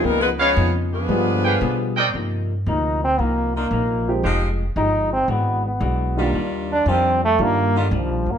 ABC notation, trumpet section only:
X:1
M:4/4
L:1/8
Q:"Swing" 1/4=114
K:Gphr
V:1 name="Trumpet section"
z [_c_def] z3 [A=Bfg] z [=C_B=deg] | [K:Cm] z8 | z8 | z8 |]